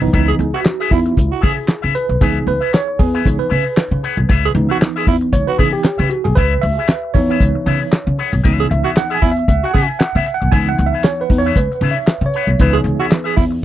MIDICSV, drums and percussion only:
0, 0, Header, 1, 2, 480
1, 0, Start_track
1, 0, Key_signature, 4, "minor"
1, 0, Tempo, 519031
1, 125, Time_signature, 4, 2, 24, 8
1, 12620, End_track
2, 0, Start_track
2, 0, Title_t, "Drums"
2, 124, Note_on_c, 9, 42, 88
2, 126, Note_on_c, 9, 36, 113
2, 217, Note_off_c, 9, 42, 0
2, 218, Note_off_c, 9, 36, 0
2, 372, Note_on_c, 9, 42, 66
2, 465, Note_off_c, 9, 42, 0
2, 601, Note_on_c, 9, 42, 81
2, 606, Note_on_c, 9, 38, 124
2, 606, Note_on_c, 9, 39, 104
2, 694, Note_off_c, 9, 42, 0
2, 699, Note_off_c, 9, 38, 0
2, 699, Note_off_c, 9, 39, 0
2, 843, Note_on_c, 9, 36, 92
2, 848, Note_on_c, 9, 46, 75
2, 935, Note_off_c, 9, 36, 0
2, 940, Note_off_c, 9, 46, 0
2, 980, Note_on_c, 9, 42, 47
2, 1073, Note_off_c, 9, 42, 0
2, 1083, Note_on_c, 9, 36, 87
2, 1096, Note_on_c, 9, 42, 90
2, 1176, Note_off_c, 9, 36, 0
2, 1188, Note_off_c, 9, 42, 0
2, 1231, Note_on_c, 9, 42, 38
2, 1323, Note_off_c, 9, 42, 0
2, 1326, Note_on_c, 9, 36, 91
2, 1331, Note_on_c, 9, 46, 66
2, 1419, Note_off_c, 9, 36, 0
2, 1423, Note_off_c, 9, 46, 0
2, 1555, Note_on_c, 9, 42, 90
2, 1557, Note_on_c, 9, 38, 122
2, 1557, Note_on_c, 9, 39, 104
2, 1648, Note_off_c, 9, 42, 0
2, 1650, Note_off_c, 9, 38, 0
2, 1650, Note_off_c, 9, 39, 0
2, 1804, Note_on_c, 9, 42, 81
2, 1897, Note_off_c, 9, 42, 0
2, 2045, Note_on_c, 9, 42, 103
2, 2046, Note_on_c, 9, 36, 124
2, 2137, Note_off_c, 9, 42, 0
2, 2139, Note_off_c, 9, 36, 0
2, 2290, Note_on_c, 9, 42, 69
2, 2382, Note_off_c, 9, 42, 0
2, 2531, Note_on_c, 9, 42, 81
2, 2536, Note_on_c, 9, 38, 122
2, 2536, Note_on_c, 9, 39, 102
2, 2623, Note_off_c, 9, 42, 0
2, 2628, Note_off_c, 9, 38, 0
2, 2628, Note_off_c, 9, 39, 0
2, 2769, Note_on_c, 9, 36, 99
2, 2779, Note_on_c, 9, 46, 73
2, 2862, Note_off_c, 9, 36, 0
2, 2872, Note_off_c, 9, 46, 0
2, 2916, Note_on_c, 9, 42, 44
2, 3008, Note_off_c, 9, 42, 0
2, 3010, Note_on_c, 9, 36, 93
2, 3024, Note_on_c, 9, 42, 87
2, 3103, Note_off_c, 9, 36, 0
2, 3116, Note_off_c, 9, 42, 0
2, 3157, Note_on_c, 9, 42, 40
2, 3250, Note_off_c, 9, 42, 0
2, 3260, Note_on_c, 9, 46, 76
2, 3352, Note_off_c, 9, 46, 0
2, 3487, Note_on_c, 9, 42, 89
2, 3489, Note_on_c, 9, 38, 119
2, 3489, Note_on_c, 9, 39, 111
2, 3579, Note_off_c, 9, 42, 0
2, 3581, Note_off_c, 9, 38, 0
2, 3581, Note_off_c, 9, 39, 0
2, 3736, Note_on_c, 9, 42, 86
2, 3828, Note_off_c, 9, 42, 0
2, 3972, Note_on_c, 9, 36, 112
2, 3974, Note_on_c, 9, 42, 98
2, 4065, Note_off_c, 9, 36, 0
2, 4066, Note_off_c, 9, 42, 0
2, 4211, Note_on_c, 9, 42, 75
2, 4304, Note_off_c, 9, 42, 0
2, 4452, Note_on_c, 9, 42, 82
2, 4457, Note_on_c, 9, 38, 127
2, 4457, Note_on_c, 9, 39, 94
2, 4545, Note_off_c, 9, 42, 0
2, 4550, Note_off_c, 9, 38, 0
2, 4550, Note_off_c, 9, 39, 0
2, 4689, Note_on_c, 9, 36, 91
2, 4696, Note_on_c, 9, 46, 71
2, 4781, Note_off_c, 9, 36, 0
2, 4788, Note_off_c, 9, 46, 0
2, 4821, Note_on_c, 9, 42, 45
2, 4914, Note_off_c, 9, 42, 0
2, 4926, Note_on_c, 9, 36, 86
2, 4935, Note_on_c, 9, 42, 102
2, 5019, Note_off_c, 9, 36, 0
2, 5028, Note_off_c, 9, 42, 0
2, 5065, Note_on_c, 9, 42, 42
2, 5158, Note_off_c, 9, 42, 0
2, 5170, Note_on_c, 9, 36, 92
2, 5173, Note_on_c, 9, 46, 72
2, 5262, Note_off_c, 9, 36, 0
2, 5266, Note_off_c, 9, 46, 0
2, 5404, Note_on_c, 9, 42, 92
2, 5405, Note_on_c, 9, 38, 121
2, 5405, Note_on_c, 9, 39, 96
2, 5496, Note_off_c, 9, 42, 0
2, 5498, Note_off_c, 9, 38, 0
2, 5498, Note_off_c, 9, 39, 0
2, 5646, Note_on_c, 9, 42, 85
2, 5739, Note_off_c, 9, 42, 0
2, 5889, Note_on_c, 9, 42, 89
2, 5890, Note_on_c, 9, 36, 111
2, 5982, Note_off_c, 9, 36, 0
2, 5982, Note_off_c, 9, 42, 0
2, 6133, Note_on_c, 9, 46, 71
2, 6225, Note_off_c, 9, 46, 0
2, 6364, Note_on_c, 9, 42, 73
2, 6369, Note_on_c, 9, 38, 127
2, 6369, Note_on_c, 9, 39, 98
2, 6456, Note_off_c, 9, 42, 0
2, 6461, Note_off_c, 9, 38, 0
2, 6461, Note_off_c, 9, 39, 0
2, 6608, Note_on_c, 9, 36, 98
2, 6613, Note_on_c, 9, 46, 74
2, 6700, Note_off_c, 9, 36, 0
2, 6705, Note_off_c, 9, 46, 0
2, 6746, Note_on_c, 9, 42, 48
2, 6839, Note_off_c, 9, 42, 0
2, 6847, Note_on_c, 9, 36, 103
2, 6856, Note_on_c, 9, 42, 89
2, 6940, Note_off_c, 9, 36, 0
2, 6948, Note_off_c, 9, 42, 0
2, 7101, Note_on_c, 9, 46, 72
2, 7193, Note_off_c, 9, 46, 0
2, 7328, Note_on_c, 9, 42, 87
2, 7330, Note_on_c, 9, 38, 107
2, 7330, Note_on_c, 9, 39, 101
2, 7421, Note_off_c, 9, 42, 0
2, 7423, Note_off_c, 9, 38, 0
2, 7423, Note_off_c, 9, 39, 0
2, 7573, Note_on_c, 9, 46, 85
2, 7666, Note_off_c, 9, 46, 0
2, 7812, Note_on_c, 9, 42, 89
2, 7813, Note_on_c, 9, 36, 118
2, 7904, Note_off_c, 9, 42, 0
2, 7905, Note_off_c, 9, 36, 0
2, 8056, Note_on_c, 9, 42, 78
2, 8148, Note_off_c, 9, 42, 0
2, 8288, Note_on_c, 9, 42, 81
2, 8293, Note_on_c, 9, 38, 125
2, 8293, Note_on_c, 9, 39, 106
2, 8381, Note_off_c, 9, 42, 0
2, 8386, Note_off_c, 9, 38, 0
2, 8386, Note_off_c, 9, 39, 0
2, 8528, Note_on_c, 9, 36, 95
2, 8530, Note_on_c, 9, 46, 69
2, 8620, Note_off_c, 9, 36, 0
2, 8623, Note_off_c, 9, 46, 0
2, 8664, Note_on_c, 9, 42, 49
2, 8757, Note_off_c, 9, 42, 0
2, 8768, Note_on_c, 9, 36, 97
2, 8773, Note_on_c, 9, 42, 99
2, 8860, Note_off_c, 9, 36, 0
2, 8866, Note_off_c, 9, 42, 0
2, 8915, Note_on_c, 9, 42, 43
2, 9007, Note_off_c, 9, 42, 0
2, 9012, Note_on_c, 9, 36, 94
2, 9020, Note_on_c, 9, 46, 69
2, 9105, Note_off_c, 9, 36, 0
2, 9113, Note_off_c, 9, 46, 0
2, 9252, Note_on_c, 9, 42, 87
2, 9254, Note_on_c, 9, 38, 127
2, 9254, Note_on_c, 9, 39, 108
2, 9344, Note_off_c, 9, 42, 0
2, 9346, Note_off_c, 9, 38, 0
2, 9346, Note_off_c, 9, 39, 0
2, 9491, Note_on_c, 9, 42, 84
2, 9583, Note_off_c, 9, 42, 0
2, 9730, Note_on_c, 9, 42, 89
2, 9732, Note_on_c, 9, 36, 118
2, 9823, Note_off_c, 9, 42, 0
2, 9825, Note_off_c, 9, 36, 0
2, 9974, Note_on_c, 9, 42, 82
2, 10066, Note_off_c, 9, 42, 0
2, 10207, Note_on_c, 9, 42, 75
2, 10212, Note_on_c, 9, 38, 127
2, 10212, Note_on_c, 9, 39, 97
2, 10300, Note_off_c, 9, 42, 0
2, 10305, Note_off_c, 9, 38, 0
2, 10305, Note_off_c, 9, 39, 0
2, 10449, Note_on_c, 9, 36, 104
2, 10460, Note_on_c, 9, 46, 77
2, 10542, Note_off_c, 9, 36, 0
2, 10553, Note_off_c, 9, 46, 0
2, 10588, Note_on_c, 9, 42, 46
2, 10680, Note_off_c, 9, 42, 0
2, 10688, Note_on_c, 9, 36, 98
2, 10698, Note_on_c, 9, 42, 96
2, 10781, Note_off_c, 9, 36, 0
2, 10791, Note_off_c, 9, 42, 0
2, 10839, Note_on_c, 9, 42, 42
2, 10932, Note_off_c, 9, 42, 0
2, 10941, Note_on_c, 9, 46, 67
2, 11033, Note_off_c, 9, 46, 0
2, 11165, Note_on_c, 9, 42, 91
2, 11167, Note_on_c, 9, 38, 127
2, 11167, Note_on_c, 9, 39, 95
2, 11257, Note_off_c, 9, 42, 0
2, 11259, Note_off_c, 9, 38, 0
2, 11259, Note_off_c, 9, 39, 0
2, 11409, Note_on_c, 9, 42, 78
2, 11501, Note_off_c, 9, 42, 0
2, 11646, Note_on_c, 9, 42, 95
2, 11649, Note_on_c, 9, 36, 103
2, 11739, Note_off_c, 9, 42, 0
2, 11742, Note_off_c, 9, 36, 0
2, 11888, Note_on_c, 9, 42, 74
2, 11981, Note_off_c, 9, 42, 0
2, 12125, Note_on_c, 9, 42, 82
2, 12130, Note_on_c, 9, 38, 111
2, 12130, Note_on_c, 9, 39, 99
2, 12218, Note_off_c, 9, 42, 0
2, 12223, Note_off_c, 9, 38, 0
2, 12223, Note_off_c, 9, 39, 0
2, 12368, Note_on_c, 9, 36, 92
2, 12376, Note_on_c, 9, 46, 77
2, 12460, Note_off_c, 9, 36, 0
2, 12469, Note_off_c, 9, 46, 0
2, 12620, End_track
0, 0, End_of_file